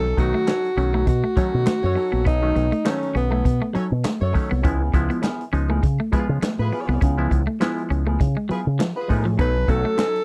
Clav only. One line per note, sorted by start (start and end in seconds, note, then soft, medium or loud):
0.17 0.51 D#3 loud
0.17 0.51 F#3 medium
0.17 0.51 A3 medium
0.17 0.51 D#4 loud
0.77 1.10 D#3 medium
0.77 1.11 F#3 medium
0.77 1.11 A3 medium
0.77 1.11 C#4 medium
1.36 1.95 D#3 medium
1.36 1.95 F#3 medium
1.36 1.95 A3 medium
1.36 1.95 C#4 medium
2.42 2.67 D#3 medium
2.42 2.67 F#3 medium
2.42 2.67 A3 medium
2.42 2.67 C#4 medium
2.85 3.52 D#3 medium
2.85 3.52 F#3 medium
2.85 3.52 A3 medium
2.85 3.52 D#4 medium
4.34 4.52 D#3 medium
4.34 4.52 F#3 medium
4.34 4.52 A3 medium
4.34 4.53 C#4 medium
4.64 4.82 F3 medium
4.64 4.82 G#3 medium
4.64 4.82 B3 medium
4.64 4.82 E4 loud
4.94 5.27 F3 loud
4.94 5.27 G#3 loud
4.94 5.27 B3 loud
4.94 5.27 E4 loud
5.53 5.86 F3 medium
5.53 5.86 G#3 medium
5.53 5.87 B3 medium
5.53 5.86 D#4 medium
6.12 6.70 F3 medium
6.12 6.70 G#3 medium
6.12 6.70 B3 medium
6.12 6.20 E4 medium
6.19 6.74 F4 loud
7.18 7.42 F3 loud
7.18 7.42 G#3 medium
7.18 7.42 B3 medium
7.18 7.42 E4 loud
7.61 8.27 F3 loud
7.61 8.27 G#3 loud
7.61 8.27 B3 loud
7.61 8.27 E4 loud
9.09 9.27 F3 medium
9.09 9.27 G#3 medium
9.09 9.28 B3 medium
9.09 9.28 D#4 medium
9.39 9.57 F#3 medium
9.39 9.57 A3 medium
9.39 9.57 C#4 medium
9.39 9.57 D#4 medium
9.68 10.02 F#3 medium
9.68 10.02 A3 medium
9.68 10.02 C#4 medium
9.68 10.02 F#4 loud